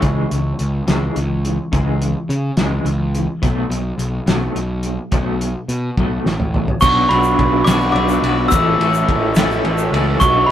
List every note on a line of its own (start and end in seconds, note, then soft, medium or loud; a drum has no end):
0.02 0.23 C#2 medium
0.02 0.29 C#3 medium
0.02 0.29 E3 medium
0.02 0.29 G#3 medium
0.02 kick loud
0.02 closed hi-hat medium
0.31 0.52 C#2 medium
0.31 0.57 C#3 medium
0.31 0.57 E3 medium
0.31 closed hi-hat medium
0.59 0.80 C#2 medium
0.59 closed hi-hat medium
0.87 1.08 C#2 medium
0.87 1.14 C#3 medium
0.87 1.14 E3 medium
0.87 1.15 G#3 medium
0.87 snare loud
0.87 closed hi-hat medium
1.16 1.57 C#2 medium
1.16 1.42 C#3 medium
1.16 1.43 E3 medium
1.16 closed hi-hat medium
1.45 1.71 C#3 medium
1.45 1.71 E3 medium
1.45 closed hi-hat medium
1.72 2.13 C#2 medium
1.72 1.99 C#3 medium
1.72 2.00 E3 medium
1.72 1.99 G#3 medium
1.72 kick loud
1.72 closed hi-hat medium
2.02 2.27 C#3 medium
2.02 2.27 E3 medium
2.02 closed hi-hat medium
2.29 2.50 C#3 medium
2.29 closed hi-hat medium
2.57 2.78 C#2 medium
2.57 2.84 C#3 medium
2.57 2.84 E3 medium
2.57 2.85 G#3 loud
2.57 snare loud
2.57 closed hi-hat medium
2.84 3.26 C#2 medium
2.84 3.11 C#3 medium
2.84 3.11 E3 medium
2.84 closed hi-hat medium
3.15 3.40 C#3 medium
3.15 3.40 E3 medium
3.15 closed hi-hat medium
3.42 3.63 B1 medium
3.42 3.69 B2 medium
3.42 3.69 F#3 medium
3.42 3.70 A3 medium
3.42 kick loud
3.42 closed hi-hat medium
3.69 3.90 B1 medium
3.69 3.97 B2 medium
3.69 3.97 F#3 medium
3.69 closed hi-hat medium
3.98 4.19 B1 medium
3.98 closed hi-hat medium
4.26 4.47 B1 medium
4.26 4.53 B2 medium
4.26 4.54 F#3 medium
4.26 4.54 A3 loud
4.26 snare loud
4.26 closed hi-hat medium
4.55 4.96 B1 medium
4.55 4.81 B2 medium
4.55 4.81 F#3 medium
4.55 closed hi-hat medium
4.83 5.10 B2 medium
4.83 5.10 F#3 medium
4.83 closed hi-hat medium
5.12 5.53 B1 medium
5.12 5.39 B2 medium
5.12 5.39 F#3 medium
5.12 5.39 A3 medium
5.12 kick loud
5.12 closed hi-hat medium
5.41 5.67 B2 medium
5.41 5.67 F#3 medium
5.41 closed hi-hat medium
5.68 5.89 B2 medium
5.68 closed hi-hat medium
5.97 6.18 B1 medium
5.97 6.24 B2 medium
5.97 6.24 F#3 medium
5.97 6.25 A3 medium
5.97 kick medium
5.97 high tom medium
6.26 6.66 A1 medium
6.26 6.51 B2 medium
6.26 6.51 F#3 medium
6.26 snare medium
6.40 mid tom medium
6.54 6.79 B2 medium
6.54 6.79 F#3 medium
6.54 floor tom medium
6.68 floor tom medium
6.81 7.05 B1 loud
6.81 7.10 B2 medium
6.81 7.11 F#3 loud
6.81 7.11 B3 medium
6.81 7.11 D4 loud
6.81 7.12 F#4 loud
6.81 8.49 B4 medium
6.81 8.49 D5 medium
6.81 8.50 F#5 medium
6.81 7.10 C#6 medium
6.81 8.49 D6 medium
6.81 kick loud
6.81 crash loud
6.81 shaker loud
7.09 7.33 B1 medium
7.09 7.67 B2 medium
7.09 7.67 F#3 loud
7.09 7.67 B3 medium
7.09 7.68 D4 medium
7.09 7.62 B5 medium
7.09 ride medium
7.13 7.68 F#4 loud
7.23 shaker medium
7.39 7.61 B1 medium
7.39 kick medium
7.39 ride medium
7.64 7.89 B1 medium
7.64 7.96 B2 medium
7.64 7.96 B3 medium
7.64 7.91 D6 loud
7.64 snare loud
7.64 ride loud
7.64 shaker loud
7.69 7.97 F#3 loud
7.69 7.97 D4 loud
7.69 7.97 F#4 loud
7.81 shaker soft
7.92 8.17 B1 medium
7.92 8.46 D6 loud
7.92 ride medium
7.97 8.25 B2 medium
7.97 8.25 F#3 medium
7.97 8.25 B3 medium
7.97 8.26 D4 medium
7.97 8.27 F#4 medium
8.09 shaker medium
8.22 8.45 B1 medium
8.22 8.51 B2 medium
8.22 8.51 F#3 medium
8.22 8.51 B3 medium
8.22 ride medium
8.27 8.51 D4 medium
8.27 8.52 F#4 loud
8.48 8.74 A1 loud
8.48 10.19 A4 medium
8.48 10.19 C#5 medium
8.48 10.19 E5 medium
8.48 10.18 C#6 medium
8.48 9.58 E6 loud
8.48 kick loud
8.48 ride loud
8.48 shaker loud
8.53 8.82 A2 loud
8.53 8.82 E3 medium
8.53 8.82 A3 loud
8.53 8.83 C#4 loud
8.53 8.80 E4 loud
8.53 8.83 A4 loud
8.79 9.02 A1 medium
8.79 9.37 E4 medium
8.79 ride medium
8.83 9.36 A2 medium
8.83 9.37 E3 loud
8.83 9.37 A3 medium
8.83 9.37 C#4 loud
8.83 9.38 A4 loud
8.94 shaker medium
9.09 9.31 A1 medium
9.09 kick medium
9.09 ride medium
9.35 9.58 A1 loud
9.35 9.64 A2 loud
9.35 9.64 E3 loud
9.35 9.65 A3 loud
9.35 9.65 C#4 loud
9.35 9.64 E4 loud
9.35 snare loud
9.35 ride loud
9.35 shaker medium
9.39 9.65 A4 loud
9.51 shaker soft
9.65 9.87 A1 medium
9.65 9.91 A2 medium
9.65 9.91 E3 medium
9.65 9.92 A3 medium
9.65 9.92 C#4 medium
9.65 9.94 E4 loud
9.65 9.92 A4 medium
9.65 ride medium
9.78 shaker medium
9.92 10.15 C#2 medium
9.92 10.18 A2 medium
9.92 10.18 E3 medium
9.92 10.19 A3 medium
9.92 10.19 C#4 medium
9.92 10.20 E4 medium
9.92 10.19 A4 medium
9.92 ride medium
10.20 10.43 B1 loud
10.20 10.47 B2 medium
10.20 10.48 F#3 loud
10.20 10.48 B3 loud
10.20 10.48 D4 loud
10.20 10.48 F#4 loud
10.20 10.52 D5 medium
10.20 10.52 F#5 medium
10.20 10.46 C#6 loud
10.20 kick loud
10.20 ride loud
10.20 shaker loud
10.24 10.52 B4 medium
10.24 10.52 D6 medium
10.46 10.52 B2 medium
10.46 10.52 B5 medium